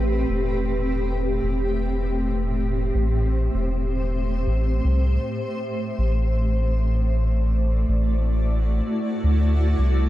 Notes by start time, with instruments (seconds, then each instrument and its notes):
Already playing: sub bass A1, ambient pad A2 A3 C4 G4 B4
0.29 sub bass E1
1.43 sub bass E1
2.35 ambient pad C5
2.95 sub bass A1
3.54 sub bass E1
4.47 sub bass A1
4.84 sub bass C2
5.98 sub bass A1
6.28 ambient pad A3
6.84 ambient pad D5
7.57 ambient pad E4
7.61 ambient pad F#4
7.89 sub bass A1
9.24 sub bass D2
9.78 sub bass C2